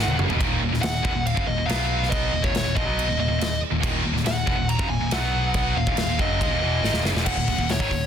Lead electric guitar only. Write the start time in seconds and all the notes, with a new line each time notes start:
Already playing: F#5
0.82 F#5
1.27 F5
1.47 D#5
1.67 F5
2.10 D#5
2.43 C#5
2.75 D#5
3.20 D#5
4.27 F#5
4.69 A#5
4.90 G#5
5.12 F#5
5.56 F#5
5.78 F5
6.21 D#5
7.26 F#5
7.70 C#5